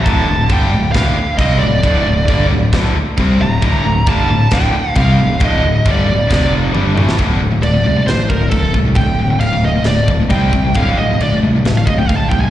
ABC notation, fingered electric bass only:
X:1
M:4/4
L:1/8
Q:1/4=135
K:Dm
V:1 name="Fingered electric bass" clef=bass
D,,, D,,, G,,, D,,, D,,, z C,, D,,, | D,,, D,,, G,,, D,,, D,,, z C,, D,,, | D,,, D,,, G,,, D,,, D,,, z C,, D,,, | D,,, D,,, G,,, D,,, F,,,2 G,,, A,,, |
D,,, D,,, D,,, C,, A,,, D,,, D,,, C,, | D,,, D,,, D,,,2 D,,,2 C,, C,, | D,,, D,,, D,,, C,, A,,, D,,, D,,, C,, |]